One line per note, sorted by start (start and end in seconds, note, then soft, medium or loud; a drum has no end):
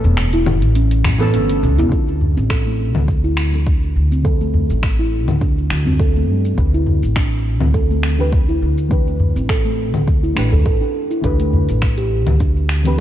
0.00 1.15 E3 medium
0.00 1.16 A3 medium
0.00 1.16 B3 medium
0.00 1.17 C#4 medium
0.00 1.18 A4 loud
0.04 0.62 E1 medium
0.04 udu loud
0.04 shaker soft
0.17 finger snap medium
0.17 closed hi-hat medium
0.17 shaker soft
0.33 0.46 E4 medium
0.33 closed hi-hat medium
0.33 shaker soft
0.46 low conga medium
0.46 shaker medium
0.62 1.01 A1 medium
0.62 closed hi-hat soft
0.62 shaker soft
0.75 0.91 C#4 medium
0.75 closed hi-hat medium
0.75 shaker soft
0.91 closed hi-hat soft
0.91 shaker soft
1.04 1.34 A1 loud
1.04 finger snap medium
1.04 kick medium
1.04 udu medium
1.04 low conga medium
1.04 shaker medium
1.18 1.88 E3 medium
1.18 1.88 A3 medium
1.18 1.89 B3 medium
1.18 1.89 C#4 medium
1.18 1.33 A4 loud
1.18 1.89 A4 loud
1.18 closed hi-hat soft
1.18 shaker soft
1.34 1.64 G1 medium
1.34 1.48 C#4 medium
1.34 closed hi-hat medium
1.34 shaker soft
1.49 1.57 C#4 medium
1.49 closed hi-hat soft
1.49 shaker soft
1.63 1.76 C#2 medium
1.63 shaker medium
1.78 1.90 E1 loud
1.78 1.91 E4 loud
1.78 closed hi-hat soft
1.78 shaker soft
1.89 2.33 D2 medium
1.89 3.48 D3 medium
1.89 3.49 G3 medium
1.89 3.49 C4 medium
1.89 2.07 D4 medium
1.89 3.50 F4 medium
1.89 kick medium
1.89 shaker medium
1.93 3.50 A4 medium
2.08 shaker soft
2.21 udu medium
2.37 2.95 A1 medium
2.37 2.49 C4 medium
2.37 shaker medium
2.50 2.59 A4 medium
2.50 finger snap medium
2.50 kick loud
2.50 shaker medium
2.66 2.79 A3 medium
2.66 shaker soft
2.95 3.93 D2 medium
2.95 low conga medium
2.95 shaker medium
3.08 kick loud
3.08 shaker medium
3.24 3.37 E4 medium
3.24 shaker soft
3.37 finger snap medium
3.51 4.21 D3 medium
3.51 4.22 F3 medium
3.51 4.21 G3 medium
3.51 4.22 C4 medium
3.51 4.23 A4 medium
3.51 shaker medium
3.67 3.82 D4 medium
3.67 kick loud
3.67 shaker medium
3.83 shaker soft
3.96 4.66 D2 medium
4.12 4.24 C4 medium
4.12 shaker medium
4.22 5.81 D3 medium
4.22 5.83 F3 medium
4.22 5.82 G3 medium
4.22 5.82 C4 medium
4.22 4.34 A4 medium
4.22 kick loud
4.22 shaker medium
4.26 5.83 A4 medium
4.41 4.54 A3 medium
4.41 shaker soft
4.54 udu loud
4.70 5.28 A1 medium
4.70 shaker medium
4.83 finger snap medium
4.83 kick loud
4.83 shaker medium
4.99 5.12 E4 medium
4.99 shaker soft
5.28 5.67 D2 medium
5.28 low conga medium
5.28 shaker medium
5.41 5.56 D4 medium
5.41 kick loud
5.41 shaker medium
5.58 shaker soft
5.70 6.29 D2 loud
5.70 finger snap medium
5.84 6.53 D3 medium
5.84 6.54 G3 medium
5.84 6.55 C4 medium
5.84 5.99 C4 medium
5.84 6.55 F4 medium
5.84 udu medium
5.84 shaker medium
5.88 6.56 A4 medium
6.00 6.09 A4 medium
6.00 kick loud
6.00 shaker medium
6.16 6.28 A3 medium
6.16 shaker soft
6.29 6.54 G2 loud
6.45 shaker medium
6.55 6.99 D2 medium
6.55 8.14 E3 medium
6.55 8.15 A3 medium
6.55 8.15 D4 medium
6.55 8.16 G4 medium
6.55 kick loud
6.55 shaker medium
6.59 8.16 B4 medium
6.74 6.87 E4 medium
6.74 shaker soft
6.87 udu loud
7.03 7.62 A1 medium
7.03 shaker medium
7.16 7.31 D4 medium
7.16 finger snap medium
7.16 kick loud
7.16 shaker medium
7.32 shaker soft
7.61 8.59 D2 medium
7.61 7.74 C4 medium
7.61 low conga medium
7.61 shaker medium
7.74 7.83 A4 medium
7.74 kick loud
7.74 shaker medium
7.90 8.03 A3 medium
7.90 shaker soft
8.03 finger snap medium
8.17 8.86 E3 medium
8.17 8.87 A3 medium
8.17 8.87 D4 medium
8.17 8.88 G4 medium
8.17 8.88 B4 medium
8.17 shaker medium
8.33 kick loud
8.33 shaker medium
8.49 8.61 E4 medium
8.49 shaker soft
8.62 9.32 D2 medium
8.78 shaker medium
8.89 10.33 E3 medium
8.89 10.33 A3 medium
8.89 10.34 D4 medium
8.89 9.06 D4 medium
8.89 10.34 G4 medium
8.89 10.35 B4 medium
8.89 kick loud
8.89 shaker medium
9.07 shaker soft
9.20 udu loud
9.36 9.95 A1 medium
9.36 9.49 C4 medium
9.36 shaker medium
9.49 9.58 A4 medium
9.49 finger snap medium
9.49 kick loud
9.49 shaker medium
9.65 9.78 A3 medium
9.65 shaker soft
9.94 10.34 D2 medium
9.94 low conga medium
9.94 shaker medium
10.08 kick loud
10.08 shaker medium
10.23 10.36 E4 medium
10.23 shaker soft
10.34 10.50 A1 loud
10.34 11.20 E3 medium
10.34 11.20 A3 medium
10.34 11.21 D4 medium
10.34 11.21 G4 medium
10.34 finger snap medium
10.38 11.22 B4 medium
10.52 10.64 D2 medium
10.52 10.64 A4 medium
10.52 udu loud
10.52 shaker medium
10.66 10.79 A1 medium
10.66 10.80 A4 medium
10.66 kick loud
10.66 shaker medium
10.81 10.93 D4 medium
10.81 shaker soft
11.11 11.23 E4 medium
11.11 shaker medium
11.21 11.65 D2 medium
11.21 12.80 E3 medium
11.21 12.81 A3 medium
11.21 12.81 D4 medium
11.21 12.82 G4 medium
11.21 11.33 A4 medium
11.21 kick loud
11.21 closed hi-hat medium
11.21 shaker medium
11.25 12.82 B4 medium
11.40 11.52 A3 medium
11.40 closed hi-hat soft
11.40 shaker soft
11.53 udu loud
11.69 12.27 A1 medium
11.69 closed hi-hat soft
11.69 shaker medium
11.82 finger snap medium
11.82 kick loud
11.82 closed hi-hat medium
11.82 shaker medium
11.98 12.10 G4 medium
11.98 closed hi-hat soft
11.98 shaker soft
12.27 13.00 D2 medium
12.27 closed hi-hat soft
12.27 low conga medium
12.27 shaker medium
12.40 12.55 D4 medium
12.40 kick medium
12.40 closed hi-hat soft
12.40 shaker medium
12.56 shaker soft
12.69 finger snap medium
12.83 13.00 E3 medium
12.83 13.00 A3 medium
12.83 12.98 C4 medium
12.83 13.00 D4 medium
12.83 13.00 G4 medium
12.83 13.00 B4 medium
12.83 closed hi-hat soft
12.83 shaker medium